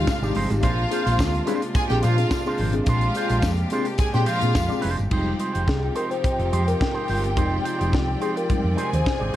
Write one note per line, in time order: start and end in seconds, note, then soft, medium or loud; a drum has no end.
0.00 5.08 C3 medium
0.00 0.60 G3 medium
0.00 0.59 G#3 medium
0.00 5.08 D4 medium
0.00 0.32 F4 medium
0.00 0.60 F4 medium
0.00 0.32 F5 loud
0.07 muted clean electric guitar stroke soft
0.07 kick loud
0.07 snare loud
0.07 tambourine medium
0.22 0.32 G#1 medium
0.22 0.35 G#3 medium
0.22 0.34 G#3 soft
0.22 0.35 D#4 medium
0.22 0.35 G4 medium
0.22 0.36 D5 medium
0.22 tambourine medium
0.35 0.47 G1 loud
0.35 0.50 F3 medium
0.35 0.55 G#3 medium
0.35 0.51 D#4 medium
0.35 0.50 G4 medium
0.35 0.49 C5 loud
0.35 open hi-hat medium
0.50 0.60 G#1 loud
0.50 0.62 G#3 medium
0.50 0.63 D#4 medium
0.50 0.63 G4 medium
0.50 muted clean electric guitar stroke soft
0.50 closed hi-hat soft
0.50 tambourine soft
0.62 0.84 A#1 loud
0.62 0.77 A#2 medium
0.62 0.77 F3 medium
0.62 0.82 G#3 medium
0.62 5.08 G#3 medium
0.62 5.08 A#3 medium
0.62 0.82 D4 medium
0.62 0.82 F4 loud
0.62 1.44 F4 medium
0.62 2.86 F4 medium
0.62 0.82 C5 loud
0.62 1.43 F5 loud
0.62 kick loud
0.62 closed hi-hat medium
0.62 tambourine medium
0.91 1.06 G#3 medium
0.91 1.05 D4 medium
0.91 1.06 D4 medium
0.91 1.05 F4 medium
0.91 1.05 G#4 medium
0.91 1.04 C5 medium
0.91 closed hi-hat medium
0.91 tambourine soft
1.06 1.16 A#1 loud
1.06 1.20 G#3 soft
1.06 1.20 D4 medium
1.06 1.20 F4 medium
1.06 1.20 C5 medium
1.06 closed hi-hat medium
1.06 tambourine soft
1.19 1.40 D2 medium
1.19 kick loud
1.19 snare loud
1.19 tambourine medium
1.34 muted clean electric guitar stroke soft
1.34 closed hi-hat soft
1.46 1.67 G#3 medium
1.46 1.61 C4 medium
1.46 1.61 D4 medium
1.46 1.61 F4 medium
1.46 1.61 G#4 loud
1.46 1.61 C5 medium
1.46 closed hi-hat medium
1.46 tambourine soft
1.62 muted clean electric guitar stroke soft
1.62 closed hi-hat soft
1.75 1.88 G#4 loud
1.75 1.87 G#5 loud
1.75 muted clean electric guitar stroke soft
1.75 kick loud
1.75 closed hi-hat medium
1.75 tambourine medium
1.88 2.00 A#1 medium
1.88 2.02 C4 medium
1.88 2.02 D4 medium
1.88 2.00 G4 loud
1.88 2.03 G#4 medium
1.88 2.00 G5 loud
1.88 muted clean electric guitar stroke medium
1.88 snare soft
1.88 closed hi-hat soft
2.02 2.17 A#2 medium
2.02 2.24 A#2 loud
2.02 2.17 F3 medium
2.02 2.22 G#3 medium
2.02 2.17 D4 medium
2.02 2.56 F4 loud
2.02 2.17 F4 medium
2.02 2.16 C5 medium
2.02 2.56 F5 loud
2.02 closed hi-hat medium
2.02 tambourine medium
2.18 2.30 C4 medium
2.18 2.30 D4 medium
2.18 2.30 G#4 medium
2.18 muted clean electric guitar stroke soft
2.18 closed hi-hat medium
2.18 tambourine soft
2.31 muted clean electric guitar stroke soft
2.31 kick loud
2.31 snare loud
2.31 tambourine loud
2.46 2.59 G#3 medium
2.46 2.58 C4 medium
2.46 2.58 D4 medium
2.46 2.59 D4 medium
2.46 2.60 F4 medium
2.46 2.59 G#4 medium
2.46 2.60 C5 medium
2.46 tambourine soft
2.58 2.80 G#1 medium
2.58 2.73 A#2 medium
2.58 2.73 F3 medium
2.58 2.75 G#3 medium
2.58 2.75 D4 medium
2.58 2.75 F4 medium
2.58 2.74 C5 medium
2.58 open hi-hat medium
2.73 2.86 C4 medium
2.73 2.86 D4 medium
2.73 2.86 G#4 medium
2.73 muted clean electric guitar stroke soft
2.73 closed hi-hat soft
2.85 3.08 A#1 medium
2.85 3.01 A#2 medium
2.85 3.01 F3 medium
2.85 3.07 G#3 medium
2.85 3.07 D4 medium
2.85 3.67 F4 medium
2.85 3.07 F4 medium
2.85 5.10 G4 medium
2.85 3.07 C5 loud
2.85 3.67 F5 loud
2.85 kick loud
2.85 closed hi-hat medium
2.85 tambourine medium
3.01 closed hi-hat soft
3.14 3.31 G#3 medium
3.14 3.29 D4 medium
3.14 3.31 D4 medium
3.14 3.31 F4 medium
3.14 3.29 G#4 medium
3.14 3.30 C5 medium
3.14 closed hi-hat medium
3.14 tambourine medium
3.30 3.40 A#1 loud
3.30 3.45 G#3 medium
3.30 3.45 D4 medium
3.30 3.45 F4 medium
3.30 3.44 C5 medium
3.30 closed hi-hat soft
3.30 tambourine soft
3.42 3.64 F2 medium
3.42 kick loud
3.42 snare loud
3.42 tambourine medium
3.57 muted clean electric guitar stroke soft
3.57 closed hi-hat soft
3.70 3.90 G#3 medium
3.70 3.85 C4 medium
3.70 3.87 D4 medium
3.70 3.86 D4 medium
3.70 3.86 F4 medium
3.70 3.86 G#4 loud
3.70 3.86 C5 medium
3.70 closed hi-hat medium
3.70 tambourine soft
3.85 muted clean electric guitar stroke soft
3.85 closed hi-hat soft
3.85 tambourine soft
3.98 4.11 G#4 medium
3.98 4.11 G#5 loud
3.98 muted clean electric guitar stroke soft
3.98 kick loud
3.98 closed hi-hat medium
3.98 tambourine medium
4.13 4.24 A#2 medium
4.13 4.24 G#3 soft
4.13 4.27 C4 medium
4.13 4.24 D4 medium
4.13 4.27 D4 medium
4.13 4.25 F4 medium
4.13 4.25 G4 medium
4.13 4.28 G#4 medium
4.13 4.26 C5 medium
4.13 4.25 G5 loud
4.13 snare soft
4.13 closed hi-hat soft
4.25 4.42 A#2 medium
4.25 4.42 F3 medium
4.25 4.46 G#3 loud
4.25 4.41 D4 medium
4.25 4.40 F4 medium
4.25 4.80 F4 loud
4.25 4.39 C5 loud
4.25 4.81 F5 loud
4.25 closed hi-hat medium
4.25 tambourine medium
4.41 4.52 A#2 loud
4.41 4.55 C4 medium
4.41 4.55 D4 medium
4.41 4.55 G#4 medium
4.41 muted clean electric guitar stroke medium
4.41 closed hi-hat medium
4.54 4.67 F2 medium
4.54 4.70 A#2 medium
4.54 4.70 F3 medium
4.54 muted clean electric guitar stroke soft
4.54 kick loud
4.54 snare loud
4.54 tambourine loud
4.68 4.79 G#3 medium
4.68 4.83 C4 medium
4.68 4.80 D4 soft
4.68 4.82 D4 medium
4.68 4.81 F4 medium
4.68 4.82 G#4 medium
4.68 4.81 D5 medium
4.68 closed hi-hat soft
4.68 tambourine medium
4.80 5.03 G#3 medium
4.80 4.97 D4 medium
4.80 4.90 D4 soft
4.80 4.97 F4 medium
4.80 4.90 G#4 soft
4.80 4.96 C5 loud
4.80 open hi-hat medium
4.84 4.95 F1 medium
4.97 5.09 G1 medium
4.97 muted clean electric guitar stroke medium
4.97 closed hi-hat soft
4.97 tambourine soft
5.10 5.32 F1 loud
5.10 9.36 C3 medium
5.10 9.36 F3 medium
5.10 5.49 G3 medium
5.10 5.50 G#3 soft
5.10 5.31 G#3 medium
5.10 9.36 C4 medium
5.10 7.34 D#4 medium
5.10 5.50 D#4 medium
5.10 5.31 D#4 medium
5.10 9.36 F4 medium
5.10 5.31 G4 medium
5.10 8.74 G4 medium
5.10 5.31 C5 medium
5.10 8.75 G5 medium
5.10 kick loud
5.10 crash medium
5.39 5.54 G#3 medium
5.39 5.54 D#4 medium
5.39 5.53 G4 medium
5.39 5.52 C5 medium
5.39 closed hi-hat medium
5.53 5.65 F1 medium
5.53 5.69 G#3 medium
5.53 5.68 D#4 medium
5.53 5.68 G4 medium
5.53 5.68 C5 medium
5.53 closed hi-hat soft
5.68 5.88 C2 medium
5.68 5.95 G#4 medium
5.68 kick loud
5.68 snare loud
5.82 muted clean electric guitar stroke soft
5.94 6.14 G#3 medium
5.94 6.11 D#4 medium
5.94 6.11 G4 medium
5.94 6.03 A#4 medium
5.94 6.10 C5 medium
5.94 closed hi-hat medium
6.11 6.69 C5 loud
6.11 muted clean electric guitar stroke soft
6.11 closed hi-hat soft
6.24 muted clean electric guitar stroke soft
6.24 kick loud
6.24 closed hi-hat medium
6.38 6.49 F1 medium
6.38 muted clean electric guitar stroke soft
6.38 closed hi-hat soft
6.52 6.73 F2 medium
6.52 6.71 G#3 medium
6.52 6.67 D#4 medium
6.52 6.67 G4 medium
6.52 6.66 C5 medium
6.52 closed hi-hat medium
6.67 7.48 A#4 medium
6.67 muted clean electric guitar stroke soft
6.67 closed hi-hat medium
6.80 muted clean electric guitar stroke soft
6.80 kick loud
6.80 snare loud
6.94 7.07 G#3 medium
6.94 7.08 D#4 medium
6.94 7.08 G4 medium
6.94 7.09 C5 medium
7.08 7.37 G1 medium
7.08 7.24 G#3 medium
7.08 7.23 D#4 medium
7.08 7.23 G4 medium
7.08 7.23 C5 medium
7.08 open hi-hat medium
7.24 muted clean electric guitar stroke soft
7.24 closed hi-hat soft
7.36 7.58 F1 medium
7.36 9.36 F3 soft
7.36 7.56 G#3 medium
7.36 8.49 G#3 soft
7.36 7.56 D#4 medium
7.36 8.50 D#4 medium
7.36 7.56 G4 loud
7.36 7.56 C5 medium
7.36 9.36 D5 medium
7.36 kick loud
7.36 closed hi-hat medium
7.64 7.79 G#3 medium
7.64 7.79 D#4 medium
7.64 7.78 G4 medium
7.64 7.78 C5 medium
7.64 closed hi-hat medium
7.79 7.90 F1 medium
7.79 7.94 G#3 medium
7.79 7.94 D#4 medium
7.79 7.94 G4 medium
7.79 7.93 C5 medium
7.79 closed hi-hat soft
7.93 8.14 C2 medium
7.93 8.23 F4 medium
7.93 kick loud
7.93 snare loud
8.08 muted clean electric guitar stroke soft
8.20 8.40 G#3 medium
8.20 8.36 D#4 medium
8.20 8.35 G4 medium
8.20 8.29 G#4 medium
8.20 8.35 C5 medium
8.20 closed hi-hat medium
8.36 8.95 A#4 medium
8.36 muted clean electric guitar stroke soft
8.36 closed hi-hat soft
8.48 8.75 G3 soft
8.48 8.76 G#3 soft
8.48 8.76 D#4 soft
8.48 muted clean electric guitar stroke soft
8.48 muted fingered electric bass stroke soft
8.48 kick loud
8.48 closed hi-hat medium
8.64 8.74 F2 medium
8.64 muted clean electric guitar stroke soft
8.77 8.97 G#3 medium
8.77 8.91 D#4 medium
8.77 8.90 G4 medium
8.77 9.36 G#4 medium
8.77 8.90 C5 medium
8.77 9.36 G#5 medium
8.77 closed hi-hat medium
8.91 9.03 D#2 loud
8.91 9.36 C5 medium
8.91 muted clean electric guitar stroke soft
8.91 closed hi-hat medium
9.04 muted clean electric guitar stroke soft
9.04 kick loud
9.04 snare loud
9.19 9.31 G#1 medium
9.19 9.32 G#3 soft
9.19 9.32 D#4 soft
9.19 9.33 G4 medium
9.19 9.34 D5 medium